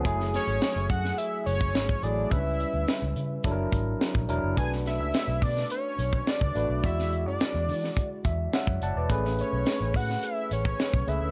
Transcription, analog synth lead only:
\new Staff \with { instrumentName = "Analog synth lead" } { \time 4/4 \key a \major \tempo 4 = 106 r8 cis''4 fis''8 e''8 cis''4 d''8 | e''2 r2 | gis''8 e''4 d''8 cis''4 d''4 | e''8. d''2 r4 r16 |
r8 cis''4 fis''8 e''8 cis''4 e''8 | }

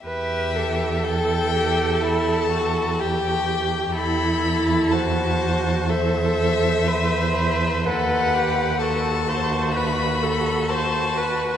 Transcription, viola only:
\new Staff \with { instrumentName = "Viola" } { \time 4/4 \key e \minor \tempo 4 = 62 b'8 a'2~ a'8 g'4 | e'4 fis'4 a'4 c''4 | b'4 a'8 c''8 b'8 a'8 c''8 b'8 | }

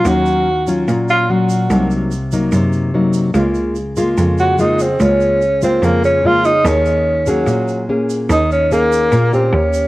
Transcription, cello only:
\new Staff \with { instrumentName = "Cello" } { \clef bass \time 4/4 \key ees \dorian \tempo 4 = 146 ees,2 bes,2 | c,2 ges,2 | des,2 f,2 | des,2 f,2 |
ees,2 bes,2 | ees,2 bes,4 ees,4 | }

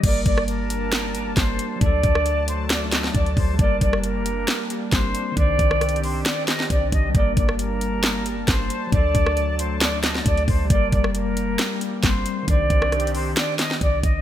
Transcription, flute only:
\new Staff \with { instrumentName = "Flute" } { \time 4/4 \key g \minor \tempo 4 = 135 d''8 d''8 bes'2 c''4 | d''4. c''8 d''8 ees''8 d''8 c''8 | d''8 d''8 bes'2 c''4 | d''4. c''8 d''8 ees''8 d''8 ees''8 |
d''8 d''8 bes'2 c''4 | d''4. c''8 d''8 ees''8 d''8 c''8 | d''8 d''8 bes'2 c''4 | d''4. c''8 d''8 ees''8 d''8 ees''8 | }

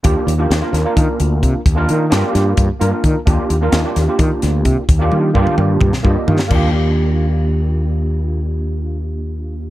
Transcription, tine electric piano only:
\new Staff \with { instrumentName = "Tine electric piano" } { \time 7/8 \key ees \major \tempo 4 = 130 << { r2. r8 | r2. r8 | r2. r8 | r2 r8 ees''8 f''8 |
r2. r8 | r2. r8 | } \\ { <bes d' f' g'>8 r16 <bes d' f' g'>8 <bes d' f' bes'>8 <bes d' f' bes'>4. r16 | r16 <bes d' f' bes'>8 r16 <bes d' f' g'>4~ <bes d' f' g'>16 r16 <bes d' f' bes'>8. r16 | <bes d' f' g'>8 r16 <bes d' f' bes'>8 <bes d' f' g'>8 <bes d' f' g'>4. r16 | r16 <bes d' f' g'>8 r16 <bes d' f' g'>4~ <bes d' f' g'>16 r16 <bes d' f' g'>8. r16 |
<bes d' f' g'>2.~ <bes d' f' g'>8~ | <bes d' f' g'>2.~ <bes d' f' g'>8 | } >> }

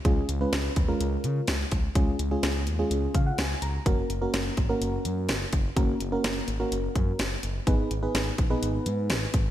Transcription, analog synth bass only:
\new Staff \with { instrumentName = "Analog synth bass" } { \clef bass \time 4/4 \key fis \mixolydian \tempo 4 = 126 cis,8 cis,8 cis,8 dis,8 cis,8 cis8 cis,8 cis,8 | cis,8 cis,8 cis,8 dis,8 cis,8 cis8 cis,8 cis,8 | fis,,8 fis,,8 fis,,8 gis,,8 fis,,8 fis,8 fis,,8 fis,,8 | fis,,8 fis,,8 fis,,8 gis,,8 fis,,8 fis,8 fis,,8 fis,,8 |
gis,,8 gis,,8 gis,,8 ais,,8 gis,,8 gis,8 gis,,8 gis,,8 | }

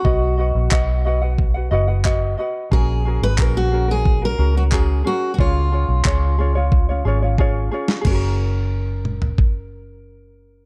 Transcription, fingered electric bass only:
\new Staff \with { instrumentName = "Fingered electric bass" } { \clef bass \time 4/4 \key fis \major \tempo 4 = 90 b,,8. ais,,16 r4. fis,,4 r8 | ais,,8. gis,,16 ais,,4. cis,4 r8 | cis,8. b,,16 cis,4. gis,,4 r8 | fis,,1 | }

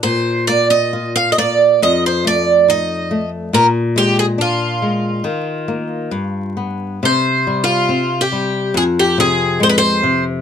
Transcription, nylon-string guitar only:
\new Staff \with { instrumentName = "Nylon-string guitar" } { \clef bass \time 2/4 \key bes \mixolydian \tempo 4 = 70 bes,8 bes8 f'8 bes8 | f,8 a8 ees'8 a8 | bes,8 aes8 d'8 aes8 | ees8 bes8 g,8 b8 |
\key f \dorian c8 g8 c'8 g8 | f,8 c8 aes8 c8 | }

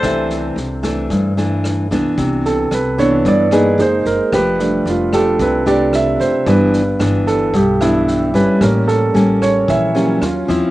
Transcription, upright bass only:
\new Staff \with { instrumentName = "Upright bass" } { \clef bass \time 4/4 \key c \major \tempo 4 = 112 c,4 c,4 g,4. c,16 r16 | c,4 c,4 g,4 fis,,8 fis,,16 r16 | f,,4 f,,4 c,4. f,,16 r16 | g,,4 g,,4 b,,4. g,,16 r16 |
a,,4 a,,4 bes,,4 ees,8 ees,16 r16 | }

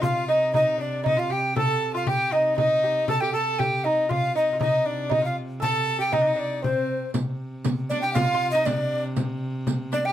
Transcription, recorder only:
\new Staff \with { instrumentName = "Recorder" } { \time 2/4 \key c \dorian \tempo 4 = 118 f''8 ees''8 ees''8 d''8 | ees''16 f''16 g''8 a''8. f''16 | g''8 ees''8 ees''4 | a''16 g''16 a''8 g''8 ees''8 |
f''8 ees''8 ees''8 d''8 | ees''16 f''16 r8 a''8. g''16 | ees''8 d''8 c''4 | r4. d''16 g''16 |
f''8. ees''16 d''8. r16 | r4. d''16 g''16 | }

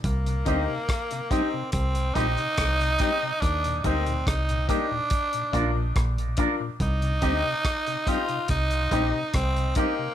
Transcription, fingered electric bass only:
\new Staff \with { instrumentName = "Fingered electric bass" } { \clef bass \time 4/4 \key c \minor \tempo 4 = 71 c,8 d,16 r4 r16 c,8 bes,,16 r16 c,8 r8 | ees,8 d,8 c,8 r4 bes,,8 bes,,8 r8 | c,8 d,16 r4 r16 c,8 bes,,16 r16 c,8 r8 | }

